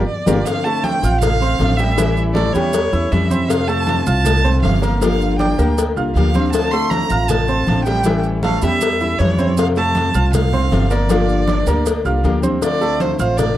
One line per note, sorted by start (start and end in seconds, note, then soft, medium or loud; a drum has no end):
0.07 0.47 D5 medium
0.26 0.41 G1 loud
0.26 0.39 G3 loud
0.26 0.39 A#3 loud
0.26 0.39 D4 loud
0.26 0.39 F4 medium
0.26 0.39 G4 loud
0.26 0.39 A#4 loud
0.26 low bongo loud
0.26 high conga medium
0.26 maracas loud
0.45 1.02 D3 medium
0.45 1.03 A3 medium
0.45 1.02 C4 medium
0.45 1.01 F4 medium
0.45 0.66 F5 loud
0.45 cowbell loud
0.45 high conga soft
0.45 maracas medium
0.64 0.96 A3 medium
0.64 0.96 A4 medium
0.64 0.85 A5 loud
0.64 0.97 A5 medium
0.64 high conga soft
0.64 maracas soft
0.84 1.20 G5 loud
0.84 cowbell medium
0.84 high conga medium
0.84 maracas soft
1.02 1.56 A1 loud
1.02 1.20 A3 soft
1.02 1.20 C4 soft
1.02 1.21 F4 medium
1.02 1.35 F4 medium
1.02 1.35 F5 medium
1.02 1.35 F6 medium
1.02 high conga soft
1.02 maracas medium
1.21 1.78 F5 loud
1.21 muted steel-string acoustic guitar stroke medium
1.21 cowbell loud
1.21 high conga soft
1.21 low conga medium
1.21 maracas medium
1.40 1.58 A3 soft
1.40 1.72 C4 medium
1.40 1.59 C4 medium
1.40 1.59 F4 medium
1.40 1.73 C5 medium
1.40 1.73 C6 medium
1.40 high conga soft
1.40 maracas soft
1.59 2.49 A1 loud
1.59 1.78 D3 medium
1.59 1.78 A3 medium
1.59 1.77 C4 medium
1.59 1.77 F4 medium
1.59 cowbell medium
1.59 high conga medium
1.59 maracas soft
1.77 1.95 G3 medium
1.77 1.96 A3 soft
1.77 1.97 C4 soft
1.77 1.96 F4 medium
1.77 1.95 G4 medium
1.77 2.16 E5 loud
1.77 1.95 G5 medium
1.77 cowbell medium
1.77 high conga soft
1.77 maracas medium
1.96 2.73 E3 medium
1.96 2.29 E3 medium
1.96 2.53 G3 medium
1.96 2.54 C#4 medium
1.96 2.53 E4 medium
1.96 2.29 E4 medium
1.96 2.29 E5 medium
1.96 cowbell loud
1.96 high conga soft
1.96 maracas medium
2.16 high conga soft
2.16 maracas soft
2.34 2.51 A3 medium
2.34 2.51 A4 medium
2.34 2.54 D5 loud
2.34 2.51 A5 medium
2.34 cowbell medium
2.34 high conga loud
2.34 maracas soft
2.53 2.90 E2 loud
2.53 2.86 G3 medium
2.53 2.72 G3 soft
2.53 2.73 C#4 soft
2.53 2.73 E4 medium
2.53 2.86 G4 medium
2.53 3.13 C#5 loud
2.53 2.86 G5 medium
2.53 cowbell medium
2.53 high conga soft
2.53 maracas medium
2.73 muted steel-string acoustic guitar stroke medium
2.73 cowbell loud
2.73 high conga soft
2.73 maracas medium
2.92 3.10 E2 medium
2.92 3.11 G3 soft
2.92 3.11 C#4 soft
2.92 3.11 E4 medium
2.92 3.24 E4 medium
2.92 3.24 E5 medium
2.92 3.24 E6 medium
2.92 high conga soft
2.92 maracas soft
3.11 4.01 F2 loud
3.11 3.30 E3 medium
3.11 3.30 G3 medium
3.11 3.30 C#4 medium
3.11 3.29 E4 medium
3.11 3.51 E5 medium
3.11 cowbell medium
3.11 high conga soft
3.11 maracas soft
3.30 3.49 G3 soft
3.30 3.62 C4 medium
3.30 3.49 C#4 soft
3.30 3.48 E4 medium
3.30 3.62 C5 medium
3.30 3.62 C6 medium
3.30 high conga medium
3.30 maracas medium
3.49 4.05 C3 medium
3.49 4.06 A3 medium
3.49 4.06 C4 medium
3.49 4.06 F4 medium
3.49 3.70 F5 loud
3.49 cowbell loud
3.49 maracas medium
3.68 4.00 A3 medium
3.68 4.00 A4 medium
3.68 4.04 A5 loud
3.68 4.00 A5 medium
3.68 high conga soft
3.68 maracas soft
3.87 cowbell medium
3.87 high conga medium
3.87 maracas soft
4.05 4.60 C2 loud
4.05 4.25 A3 soft
4.05 4.25 C4 soft
4.05 4.38 F4 medium
4.05 4.25 F4 soft
4.05 4.38 F5 medium
4.05 4.59 A5 loud
4.05 4.38 F6 medium
4.05 high conga soft
4.05 maracas medium
4.25 muted steel-string acoustic guitar stroke medium
4.25 cowbell loud
4.25 high conga soft
4.25 low conga medium
4.25 maracas medium
4.44 4.62 A3 soft
4.44 4.75 C4 medium
4.44 4.63 C4 soft
4.44 4.63 F4 medium
4.44 4.75 C5 medium
4.44 4.76 C6 medium
4.44 high conga soft
4.44 low conga medium
4.44 maracas soft
4.62 5.52 G1 loud
4.62 4.81 C3 medium
4.62 4.82 E3 medium
4.62 4.82 A3 medium
4.62 4.81 C4 medium
4.62 4.80 F4 medium
4.62 4.98 F5 medium
4.62 cowbell medium
4.62 high conga loud
4.62 maracas soft
4.82 4.98 A#3 medium
4.82 5.01 C4 soft
4.82 5.00 F4 medium
4.82 4.98 A#4 medium
4.82 4.98 A#5 medium
4.82 cowbell medium
4.82 maracas medium
5.00 5.57 D3 medium
5.00 5.32 F3 medium
5.00 5.61 F3 medium
5.00 5.58 A#3 medium
5.00 5.58 D4 medium
5.00 5.33 F4 medium
5.00 5.57 G4 medium
5.00 5.36 F5 loud
5.00 5.33 F5 medium
5.00 cowbell loud
5.00 high conga soft
5.00 maracas medium
5.21 high conga soft
5.21 maracas soft
5.39 5.55 D4 medium
5.39 5.55 D5 medium
5.39 5.75 G5 medium
5.39 5.55 D6 medium
5.39 cowbell medium
5.39 high conga medium
5.39 maracas soft
5.58 5.94 D2 loud
5.58 5.90 A#3 medium
5.58 5.76 A#3 soft
5.58 5.77 D4 soft
5.58 5.76 G4 medium
5.58 5.90 A#4 medium
5.58 5.90 A#5 medium
5.58 cowbell medium
5.58 high conga soft
5.58 maracas medium
5.77 muted steel-string acoustic guitar stroke medium
5.77 cowbell loud
5.77 high conga soft
5.77 maracas medium
5.96 6.14 C2 medium
5.96 6.15 A#3 soft
5.96 6.15 D4 soft
5.96 6.28 F4 medium
5.96 6.14 G4 soft
5.96 6.28 F5 medium
5.96 6.28 F6 medium
5.96 high conga soft
5.96 maracas soft
6.15 7.04 D2 medium
6.15 6.34 D3 medium
6.15 6.34 F3 medium
6.15 6.34 A#3 medium
6.15 6.34 D4 medium
6.15 6.33 G4 medium
6.15 6.51 F5 loud
6.15 cowbell medium
6.15 high conga soft
6.15 maracas soft
6.34 6.53 A#3 soft
6.34 6.66 C4 medium
6.34 6.53 D4 medium
6.34 6.53 G4 medium
6.34 6.66 C5 medium
6.34 6.66 C6 medium
6.34 high conga medium
6.34 maracas medium
6.52 7.09 D3 medium
6.52 7.11 A3 medium
6.52 7.09 C4 medium
6.52 7.09 F4 medium
6.52 6.73 A5 loud
6.52 cowbell loud
6.52 high conga soft
6.52 maracas medium
6.71 7.04 A3 medium
6.71 7.04 A4 medium
6.71 7.04 A5 medium
6.71 6.92 C6 loud
6.71 high conga soft
6.71 maracas soft
6.90 7.30 A#5 loud
6.90 cowbell medium
6.90 high conga medium
6.90 maracas soft
7.10 7.63 A1 loud
7.10 7.28 A3 soft
7.10 7.28 C4 soft
7.10 7.28 F4 soft
7.10 7.42 F4 medium
7.10 7.42 F5 medium
7.10 7.42 F6 medium
7.10 high conga soft
7.10 maracas medium
7.29 7.84 A5 loud
7.29 muted steel-string acoustic guitar stroke medium
7.29 cowbell loud
7.29 high conga soft
7.29 low conga medium
7.29 maracas medium
7.47 7.66 A3 soft
7.47 7.67 C4 soft
7.47 7.80 C4 medium
7.47 7.66 F4 medium
7.47 7.80 C5 medium
7.47 7.80 C6 medium
7.47 high conga soft
7.47 maracas soft
7.67 8.57 A1 medium
7.67 7.85 D3 medium
7.67 7.86 A3 medium
7.67 7.86 C4 medium
7.67 7.85 F4 medium
7.67 cowbell medium
7.67 high conga medium
7.67 maracas soft
7.85 8.02 G3 medium
7.85 8.05 A3 soft
7.85 8.05 C4 medium
7.85 8.04 F4 medium
7.85 8.02 G4 medium
7.85 8.21 G5 loud
7.85 8.02 G5 medium
7.85 cowbell medium
7.85 high conga soft
7.85 maracas medium
8.04 8.81 E3 medium
8.04 8.36 E3 medium
8.04 8.61 G3 medium
8.04 8.61 C#4 medium
8.04 8.37 E4 medium
8.04 8.61 E4 medium
8.04 8.37 E5 medium
8.04 cowbell loud
8.04 high conga soft
8.04 maracas medium
8.24 high conga soft
8.24 maracas soft
8.43 8.59 A3 medium
8.43 8.59 A4 medium
8.43 8.61 F5 medium
8.43 8.60 A5 medium
8.43 cowbell medium
8.43 high conga loud
8.43 maracas soft
8.62 9.15 E2 loud
8.62 8.94 G3 medium
8.62 8.80 G3 soft
8.62 8.80 C#4 soft
8.62 8.80 E4 medium
8.62 8.94 G4 medium
8.62 9.20 E5 loud
8.62 8.94 G5 medium
8.62 cowbell medium
8.62 high conga soft
8.62 maracas medium
8.81 muted steel-string acoustic guitar stroke medium
8.81 cowbell loud
8.81 high conga soft
8.81 maracas loud
9.00 9.19 G3 soft
9.00 9.19 C#4 medium
9.00 9.32 E4 medium
9.00 9.19 E4 medium
9.00 9.32 E5 medium
9.00 9.32 E6 medium
9.00 high conga soft
9.00 maracas soft
9.19 10.09 F2 medium
9.19 9.38 E3 medium
9.19 9.38 G3 medium
9.19 9.38 C#4 medium
9.19 9.37 E4 medium
9.19 9.57 C#5 medium
9.19 cowbell medium
9.19 high conga soft
9.19 maracas soft
9.38 9.58 G3 soft
9.38 9.70 C4 medium
9.38 9.57 C#4 medium
9.38 9.57 E4 soft
9.38 9.70 C5 medium
9.38 9.70 C6 medium
9.38 high conga medium
9.38 maracas medium
9.57 10.14 C3 medium
9.57 10.14 A3 medium
9.57 10.14 C4 medium
9.57 10.14 F4 medium
9.57 9.67 F5 loud
9.57 cowbell loud
9.57 high conga soft
9.57 maracas medium
9.76 10.08 A3 medium
9.76 10.08 A4 medium
9.76 10.30 A5 loud
9.76 10.08 A5 medium
9.76 high conga soft
9.76 maracas soft
9.95 cowbell medium
9.95 high conga medium
9.95 maracas soft
10.14 10.68 C2 loud
10.14 10.33 A3 soft
10.14 10.33 C4 medium
10.14 10.33 F4 medium
10.14 10.46 F4 medium
10.14 10.46 F5 medium
10.14 10.46 F6 medium
10.14 high conga soft
10.14 maracas medium
10.33 10.92 F5 loud
10.33 muted steel-string acoustic guitar stroke medium
10.33 cowbell loud
10.33 high conga soft
10.33 low conga medium
10.33 maracas medium
10.53 10.71 A3 soft
10.53 10.84 C4 medium
10.53 10.71 C4 soft
10.53 10.71 F4 medium
10.53 10.84 C5 medium
10.53 10.84 C6 medium
10.53 high conga soft
10.53 low conga medium
10.53 maracas soft
10.71 11.61 G1 loud
10.71 10.90 C3 medium
10.71 10.90 E3 medium
10.71 10.90 A3 medium
10.71 10.90 C4 medium
10.71 10.89 F4 loud
10.71 cowbell medium
10.71 high conga medium
10.71 maracas soft
10.90 11.09 A3 soft
10.90 11.06 A#3 medium
10.90 11.09 C4 soft
10.90 11.09 F4 medium
10.90 11.06 A#4 medium
10.90 12.24 D5 medium
10.90 11.07 A#5 medium
10.90 cowbell medium
10.90 high conga soft
10.90 maracas medium
11.09 11.66 D3 medium
11.09 11.66 F3 medium
11.09 11.41 F3 medium
11.09 11.66 A#3 medium
11.09 11.66 D4 medium
11.09 11.41 F4 medium
11.09 11.66 G4 medium
11.09 11.41 F5 medium
11.09 cowbell loud
11.09 high conga soft
11.09 maracas medium
11.29 high conga soft
11.29 maracas soft
11.48 11.63 D4 medium
11.48 11.64 D5 medium
11.48 11.64 D6 medium
11.48 cowbell medium
11.48 high conga loud
11.48 maracas soft
11.67 12.02 D2 loud
11.67 11.98 A#3 medium
11.67 11.85 A#3 soft
11.67 11.85 D4 soft
11.67 11.85 G4 medium
11.67 11.99 A#4 medium
11.67 11.99 A#5 medium
11.67 cowbell medium
11.67 high conga soft
11.67 maracas medium
11.85 muted steel-string acoustic guitar stroke medium
11.85 cowbell loud
11.85 high conga soft
11.85 maracas medium
12.05 12.23 C2 medium
12.05 12.23 A#3 soft
12.05 12.24 D4 soft
12.05 12.36 F4 medium
12.05 12.23 G4 medium
12.05 12.37 F5 medium
12.05 12.37 F6 medium
12.05 high conga soft
12.05 maracas soft
12.23 13.14 D2 medium
12.23 12.42 D3 medium
12.23 12.42 F3 medium
12.23 12.42 A#3 medium
12.23 12.42 D4 medium
12.23 12.41 G4 medium
12.23 cowbell medium
12.23 high conga soft
12.23 maracas soft
12.42 12.62 A#3 soft
12.42 12.59 C4 medium
12.42 12.61 D4 medium
12.42 12.61 G4 medium
12.42 12.59 C5 medium
12.42 12.59 C6 medium
12.42 high conga medium
12.42 maracas medium
12.61 13.18 D3 medium
12.61 13.20 A3 medium
12.61 13.19 C4 medium
12.61 13.18 F4 medium
12.61 13.02 D5 medium
12.61 cowbell loud
12.61 high conga soft
12.61 maracas medium
12.81 13.12 A3 medium
12.81 13.13 A4 medium
12.81 13.13 A5 medium
12.81 high conga soft
12.81 maracas soft
13.00 13.19 C5 medium
13.00 cowbell medium
13.00 high conga medium
13.00 maracas soft
13.19 13.58 A1 loud
13.19 13.38 A3 soft
13.19 13.38 C4 soft
13.19 13.38 F4 medium
13.19 13.51 F4 medium
13.19 13.39 C5 medium
13.19 13.51 F5 medium
13.19 13.51 F6 medium
13.19 high conga soft
13.19 maracas medium
13.37 13.57 D5 medium
13.37 muted steel-string acoustic guitar stroke medium
13.37 cowbell loud
13.37 high conga soft
13.37 low conga medium
13.37 maracas medium